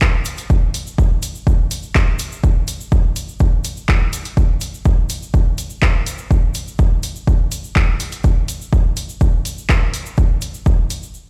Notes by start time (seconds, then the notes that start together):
0.01 kick, clap, shaker
0.25 open hi-hat, shaker
0.37 open hi-hat, shaker
0.50 kick, shaker
0.74 open hi-hat, shaker
0.87 shaker
0.98 kick, shaker
1.22 open hi-hat, shaker
1.35 shaker
1.47 kick, shaker
1.71 open hi-hat, shaker
1.83 shaker
1.95 kick, clap, shaker
2.19 open hi-hat, shaker
2.32 shaker
2.43 kick, shaker
2.68 open hi-hat, shaker
2.81 shaker
2.92 kick, shaker
3.16 open hi-hat, shaker
3.29 shaker
3.40 kick, shaker
3.64 open hi-hat, shaker
3.77 shaker
3.89 kick, clap, shaker
4.13 open hi-hat, shaker
4.25 open hi-hat, shaker
4.37 kick, shaker
4.61 open hi-hat, shaker
4.74 shaker
4.85 kick, shaker
5.09 open hi-hat, shaker
5.23 shaker
5.34 kick, shaker
5.58 open hi-hat, shaker
5.70 shaker
5.82 kick, clap, shaker
6.06 open hi-hat, shaker
6.18 shaker
6.31 kick, shaker
6.54 open hi-hat, shaker
6.68 shaker
6.79 kick, shaker
7.03 open hi-hat, shaker
7.16 shaker
7.27 kick, shaker
7.52 open hi-hat, shaker
7.64 shaker
7.76 kick, clap, shaker
8.00 open hi-hat, shaker
8.12 open hi-hat, shaker
8.24 kick, shaker
8.48 open hi-hat, shaker
8.61 shaker
8.73 kick, shaker
8.97 open hi-hat, shaker
9.09 shaker
9.21 kick, shaker
9.45 open hi-hat, shaker
9.58 shaker
9.69 kick, clap, shaker
9.94 open hi-hat, shaker
10.06 shaker
10.17 kick, shaker
10.41 open hi-hat, shaker
10.54 shaker
10.66 kick, shaker
10.90 open hi-hat, shaker
11.03 shaker
11.14 shaker